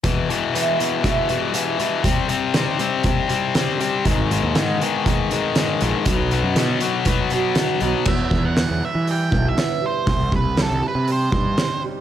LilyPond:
<<
  \new Staff \with { instrumentName = "Lead electric guitar" } { \time 4/4 \key e \minor \tempo 4 = 120 r1 | r1 | r1 | r1 |
e''8. fis''8. e''8 g''8. e''8. c''8~ | c''8 b'8 a'8 b'8 c''4. r8 | }
  \new Staff \with { instrumentName = "Steel-string acoustic guitar" } { \clef bass \time 4/4 \key e \minor e4 e'8 b8 e'8 g8 e8 g8 | c4 ees'8 c'8 ees'8 g8 c8 g8 | gis,4 dis'8 b8 dis'8 gis8 dis8 gis8 | b,4 dis'8 b8 dis'8 fis8 b,8 fis8 |
e8 e8 g8 e8 g8 e'8 b8 g8 | c8 c8 g8 c8 g8 ees'8 c'8 g8 | }
  \new Staff \with { instrumentName = "Distorted electric guitar" } { \clef bass \time 4/4 \key e \minor <e, b, e>8 <e, b, e>8 <e, b, e>8 <e, b, e>8 <e, b, e>8 <e, b, e>8 <e, b, e>8 <e, b, e>8 | <c g c'>8 <c g c'>8 <c g c'>8 <c g c'>8 <c g c'>8 <c g c'>8 <c g c'>8 <c g c'>8 | <gis, dis gis>8 <gis, dis gis>8 <gis, dis gis>8 <gis, dis gis>8 <gis, dis gis>8 <gis, dis gis>8 <gis, dis gis>8 <gis, dis gis>8 | <b, fis b>8 <b, fis b>8 <b, fis b>8 <b, fis b>8 <b, fis b>8 <b, fis b>8 <b, fis b>8 <b, fis b>8 |
r1 | r1 | }
  \new Staff \with { instrumentName = "Picked electric bass" } { \clef bass \time 4/4 \key e \minor r1 | r1 | gis,,16 gis,,8 dis,16 gis,8 r2 ais,,16 r16 | b,,16 b,,8 fis,16 b,8 r2 b,,16 r16 |
e,8 e,8. e,16 r16 e8. b,,8 r4 | c,8 c,8. c,16 r16 c8. g,8 r4 | }
  \new DrumStaff \with { instrumentName = "Drums" } \drummode { \time 4/4 <hh bd>8 hh8 hh8 hh8 <hh bd>8 hh8 hh8 hh8 | <hh bd>8 hh8 <hh sn>8 hh8 <hh bd>8 hh8 <hh sn>8 hh8 | <hh bd>8 hh8 <hh sn>8 hh8 <hh bd>8 hh8 <hh sn>8 hh8 | <hh bd>8 hh8 <hh sn>8 hh8 <hh bd>8 hh8 <hh sn>8 hh8 |
<cymc bd>8 bd8 <hho sn>4 hho8 bd8 <hho sn>4 | <hho bd>8 bd8 <hho sn>4 hho8 bd8 <hho sn>4 | }
>>